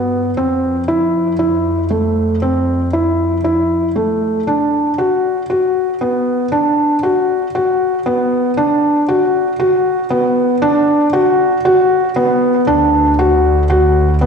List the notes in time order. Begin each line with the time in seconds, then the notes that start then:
Already playing: G2 B3
0.37 F2 C4
0.88 E4
1.39 E4
1.90 A3
2.42 C4
2.93 E4
3.44 E4
3.96 A3
4.47 D4
4.98 F#4
5.50 F#4
6.01 B3
6.52 D4
7.03 F#4
7.55 F#4
8.06 B3
8.57 D4
9.08 F#4
9.60 F#4
10.10 B3
10.62 D4
11.13 F#4
11.65 F#4
12.16 B3
12.67 D2 D4
13.19 F#4
13.70 F#4
14.21 B3